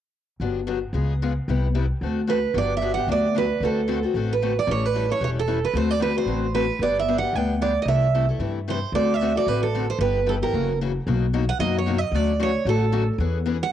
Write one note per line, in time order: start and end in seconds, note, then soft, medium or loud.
0.40 0.83 G1 medium
0.40 0.59 D3 soft
0.40 0.60 F#3 medium
0.40 0.60 B3 medium
0.40 0.60 D4 medium
0.40 0.60 G4 medium
0.67 0.77 D3 medium
0.67 0.77 F#3 medium
0.67 0.78 B3 medium
0.67 0.78 D4 medium
0.67 0.78 G4 medium
0.93 1.36 C#2 medium
0.93 1.12 C#3 soft
0.93 1.12 G#3 medium
0.93 1.13 B3 medium
0.93 1.13 F4 soft
0.93 1.13 G#4 medium
1.22 1.32 C#3 medium
1.22 1.32 G#3 medium
1.22 1.32 B3 medium
1.22 1.32 F4 medium
1.22 1.32 G#4 medium
1.48 1.91 C2 medium
1.48 1.67 C3 medium
1.48 1.67 G3 soft
1.48 1.67 B3 medium
1.48 1.67 E4 medium
1.48 1.67 G4 medium
1.75 1.85 C3 medium
1.75 1.85 G3 medium
1.75 1.85 B3 medium
1.75 1.85 E4 medium
1.75 1.85 G4 medium
2.01 2.44 D2 medium
2.01 2.20 D3 soft
2.01 2.20 A3 medium
2.01 2.20 C4 medium
2.01 2.21 F#4 medium
2.01 2.21 A4 medium
2.27 2.38 D3 medium
2.27 2.38 A3 medium
2.27 2.38 C4 medium
2.27 2.38 F#4 medium
2.27 2.38 A4 medium
2.27 2.54 B4 medium
2.54 2.97 G1 medium
2.54 2.73 D3 medium
2.54 2.73 F#3 medium
2.54 2.73 B3 medium
2.54 2.73 D4 medium
2.54 2.73 G4 medium
2.54 2.74 D5 medium
2.77 2.91 E5 medium
2.81 2.91 D3 medium
2.81 2.92 F#3 medium
2.81 2.92 B3 medium
2.81 2.92 D4 medium
2.81 2.92 G4 medium
2.94 3.08 G4 soft
2.94 3.09 F#5 medium
2.99 3.08 B3 soft
2.99 3.08 D4 soft
3.07 3.50 D2 medium
3.07 3.26 D3 medium
3.07 3.26 F#3 medium
3.07 3.27 B3 medium
3.07 3.27 D4 medium
3.07 3.27 G4 medium
3.12 3.35 D5 medium
3.35 3.45 D3 medium
3.35 3.45 F#3 medium
3.35 3.45 B3 medium
3.35 3.46 D4 medium
3.35 3.46 G4 medium
3.35 3.64 B4 medium
3.60 4.03 D2 medium
3.60 3.80 D3 medium
3.60 3.80 A3 medium
3.60 3.80 C4 medium
3.60 3.81 F#4 medium
3.60 3.80 A4 medium
3.65 4.02 A4 medium
3.88 3.98 D3 medium
3.88 3.98 A3 medium
3.88 3.98 C4 medium
3.88 3.98 F#4 medium
3.88 3.98 A4 medium
4.03 4.15 C4 soft
4.03 4.15 F#4 soft
4.03 4.14 A4 soft
4.14 4.57 A1 medium
4.14 4.33 D3 medium
4.14 4.33 A3 medium
4.14 4.34 C4 medium
4.14 4.34 F#4 medium
4.14 4.34 A4 medium
4.33 4.58 B4 medium
4.42 4.52 D3 medium
4.42 4.52 A3 medium
4.42 4.52 C4 medium
4.42 4.52 F#4 medium
4.42 4.52 A4 medium
4.59 4.69 D5 medium
4.67 5.10 A1 medium
4.67 4.86 E3 medium
4.67 4.86 G3 medium
4.67 4.86 C#4 medium
4.67 4.86 E4 medium
4.67 4.86 A4 medium
4.71 4.86 C#5 medium
4.86 5.11 B4 medium
4.94 5.04 E3 medium
4.94 5.05 G3 medium
4.94 5.05 C#4 medium
4.94 5.05 E4 medium
4.94 5.05 A4 medium
5.09 5.20 C#4 soft
5.09 5.20 E4 soft
5.09 5.20 A4 soft
5.09 5.22 C#5 medium
5.20 5.63 E1 medium
5.20 5.39 E3 soft
5.20 5.39 G3 medium
5.20 5.40 C#4 medium
5.20 5.39 E4 medium
5.20 5.40 A4 medium
5.20 5.29 C#5 medium
5.39 5.65 A4 medium
5.48 5.58 E3 medium
5.48 5.58 G3 medium
5.48 5.58 C#4 medium
5.48 5.58 E4 medium
5.48 5.59 A4 medium
5.65 5.74 B4 medium
5.74 6.16 D2 medium
5.74 5.93 D3 medium
5.74 5.93 A3 medium
5.74 5.93 C4 medium
5.74 5.93 F#4 medium
5.74 5.93 A4 medium
5.74 5.90 C5 medium
5.90 6.02 D5 medium
6.00 6.10 D3 medium
6.00 6.11 A3 medium
6.00 6.11 C4 medium
6.00 6.11 F#4 medium
6.00 6.11 A4 medium
6.00 6.17 B4 medium
6.15 6.26 C4 soft
6.15 6.27 F#4 soft
6.15 6.27 A4 soft
6.15 6.54 C5 medium
6.26 6.69 A1 medium
6.26 6.46 D3 soft
6.26 6.46 A3 medium
6.26 6.46 C4 medium
6.26 6.46 F#4 medium
6.26 6.46 A4 medium
6.54 6.64 D3 medium
6.54 6.65 A3 medium
6.54 6.65 C4 medium
6.54 6.65 F#4 medium
6.54 6.65 A4 medium
6.54 6.82 B4 medium
6.79 7.22 G1 medium
6.79 6.99 D3 medium
6.79 7.00 G3 medium
6.79 7.00 B3 medium
6.79 7.00 D4 medium
6.79 7.00 G4 medium
6.79 6.99 D5 medium
7.00 7.17 E5 medium
7.08 7.18 D3 medium
7.08 7.18 G3 medium
7.08 7.18 B3 medium
7.08 7.18 D4 medium
7.08 7.18 G4 medium
7.18 7.36 F#5 medium
7.23 7.35 B3 soft
7.23 7.35 D4 soft
7.23 7.34 G4 soft
7.33 7.76 D2 medium
7.33 7.53 D3 medium
7.33 7.54 G3 soft
7.33 7.54 B3 medium
7.33 7.61 G5 medium
7.37 7.54 D4 medium
7.37 7.54 G4 medium
7.61 7.71 D3 medium
7.61 7.71 G3 medium
7.61 7.71 B3 medium
7.61 7.71 D4 medium
7.61 7.72 G4 medium
7.61 7.80 D5 medium
7.82 8.29 C2 medium
7.82 7.88 D#5 medium
7.88 8.06 C3 soft
7.88 8.06 E3 medium
7.88 8.06 A3 medium
7.88 8.06 E4 medium
7.88 8.06 A4 medium
7.88 8.27 E5 medium
8.14 8.24 C3 medium
8.14 8.24 E3 medium
8.14 8.25 A3 medium
8.14 8.25 E4 medium
8.14 8.25 A4 medium
8.29 8.39 A3 soft
8.29 8.39 E4 soft
8.29 8.39 A4 medium
8.39 8.82 G2 medium
8.39 8.58 C3 medium
8.39 8.59 E3 soft
8.39 8.59 A3 medium
8.39 8.58 E4 medium
8.39 8.59 A4 medium
8.68 8.78 C3 medium
8.68 8.78 E3 medium
8.68 8.78 A3 medium
8.68 8.78 E4 medium
8.68 8.78 A4 medium
8.68 8.93 C5 medium
8.92 9.35 D2 medium
8.92 9.12 D3 medium
8.92 9.13 A3 medium
8.92 9.13 C4 medium
8.92 9.13 F#4 medium
8.92 9.13 A4 medium
8.92 9.14 D5 loud
9.14 9.37 E5 medium
9.21 9.31 D3 medium
9.21 9.31 A3 medium
9.21 9.31 C4 medium
9.21 9.31 F#4 medium
9.21 9.31 A4 medium
9.35 9.47 C4 soft
9.35 9.47 F#4 soft
9.35 9.46 A4 soft
9.35 9.48 D5 medium
9.46 9.89 A1 medium
9.46 9.66 D3 medium
9.46 9.66 A3 medium
9.46 9.66 C4 medium
9.46 9.66 F#4 medium
9.46 9.66 A4 medium
9.46 9.62 B4 medium
9.63 9.89 A4 medium
9.74 9.84 D3 medium
9.74 9.84 A3 medium
9.74 9.85 C4 medium
9.74 9.85 F#4 medium
9.74 9.85 A4 medium
9.90 10.00 C5 medium
9.99 10.42 G1 medium
9.99 10.19 G3 medium
9.99 10.19 B3 medium
9.99 10.19 E4 medium
9.99 10.19 G4 medium
9.99 10.25 B4 medium
10.26 10.37 G3 medium
10.26 10.37 B3 medium
10.26 10.37 E4 medium
10.26 10.37 G4 medium
10.26 10.34 A4 medium
10.42 10.54 B3 soft
10.42 10.53 E4 soft
10.42 10.53 G4 soft
10.42 10.78 A#4 medium
10.53 10.96 F#1 medium
10.53 10.72 C#3 medium
10.53 10.72 E3 medium
10.53 10.72 A#3 medium
10.53 10.72 C#4 medium
10.53 10.72 F#4 medium
10.81 10.91 C#3 medium
10.81 10.91 E3 medium
10.81 10.91 A#3 medium
10.81 10.91 C#4 medium
10.81 10.91 F#4 medium
11.07 11.49 B1 medium
11.07 11.25 B2 medium
11.07 11.25 F#3 medium
11.07 11.25 A#3 medium
11.07 11.25 D#4 medium
11.07 11.25 F#4 medium
11.33 11.43 B2 medium
11.33 11.44 F#3 medium
11.33 11.44 A#3 medium
11.33 11.44 D#4 medium
11.33 11.44 F#4 medium
11.49 11.60 F#5 medium
11.59 12.02 F#2 medium
11.59 11.78 B2 medium
11.59 11.78 F#3 medium
11.59 11.79 A#3 medium
11.59 11.79 D#4 medium
11.59 11.79 F#4 medium
11.59 11.76 D#5 loud
11.78 11.98 C#5 medium
11.86 11.96 B2 medium
11.86 11.97 F#3 medium
11.86 11.97 A#3 medium
11.86 11.97 D#4 medium
11.86 11.97 F#4 medium
11.98 12.15 D#5 medium
12.12 12.55 D2 medium
12.12 12.32 D3 medium
12.12 12.32 F#3 medium
12.12 12.32 A3 medium
12.12 12.32 C#4 medium
12.12 12.32 F#4 medium
12.12 12.41 D5 medium
12.39 12.50 D3 medium
12.39 12.50 F#3 medium
12.39 12.50 A3 medium
12.39 12.50 C#4 medium
12.39 12.50 F#4 medium
12.39 12.66 C#5 medium
12.65 13.08 A1 medium
12.65 12.84 D3 medium
12.65 12.85 F#3 medium
12.65 12.85 A3 medium
12.65 12.85 C#4 medium
12.65 12.85 F#4 medium
12.65 13.06 A4 medium
12.92 13.03 D3 medium
12.92 13.03 F#3 medium
12.92 13.03 A3 medium
12.92 13.03 C#4 medium
12.92 13.03 F#4 medium
13.18 13.61 E2 medium
13.18 13.38 E3 medium
13.18 13.38 B3 medium
13.18 13.38 C#4 medium
13.18 13.38 G#4 medium
13.46 13.56 E3 medium
13.46 13.56 B3 medium
13.46 13.56 C#4 medium
13.46 13.57 G#4 medium
13.63 13.72 F#5 loud